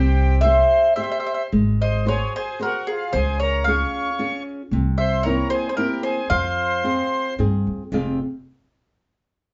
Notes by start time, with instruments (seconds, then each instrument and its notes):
Already playing: upright bass C2, nylon-string guitar C4, accordion G4, mandolin C5
0.41 nylon-string guitar G4 C5, accordion C5, mandolin E5
0.45 nylon-string guitar E5
0.96 nylon-string guitar G4 C5 E5, accordion C5, mandolin E5
1.04 mandolin E5
1.12 mandolin E5
1.20 mandolin E5
1.26 mandolin E5
1.34 mandolin E5
1.52 upright bass G#1, nylon-string guitar G#3
1.82 accordion C5, mandolin D#5
2.06 nylon-string guitar F#4 G#4 C5, accordion G#4, mandolin C#5
2.36 accordion G#4, mandolin C5
2.59 nylon-string guitar F#4 G#4 C5, mandolin A#4
2.64 accordion F#4
2.87 accordion F4, mandolin G#4
3.12 upright bass C#2, nylon-string guitar C#3, accordion G#4, mandolin C5
3.40 accordion A#4, mandolin C#5
3.64 nylon-string guitar C#4 F4 G#4, accordion C#5, mandolin F5
4.19 nylon-string guitar C#4 F4 G#4
4.71 upright bass C2, nylon-string guitar C3
4.98 accordion C5, mandolin E5
5.23 nylon-string guitar A#3 C4 E4, accordion A#4, mandolin C#5
5.50 accordion G#4, mandolin C5
5.69 accordion G#4, mandolin C5
5.77 nylon-string guitar A#3 C4 E4, accordion G4, mandolin A#4
6.03 accordion G#4, mandolin C5
6.30 upright bass F2, nylon-string guitar F3, accordion C5, mandolin F5
6.84 nylon-string guitar C4 F4 G#4
7.39 upright bass G2, nylon-string guitar C4 F4 G#4
7.67 upright bass F2
7.92 upright bass F1, nylon-string guitar F2 C3 C4 F4 G#4 F5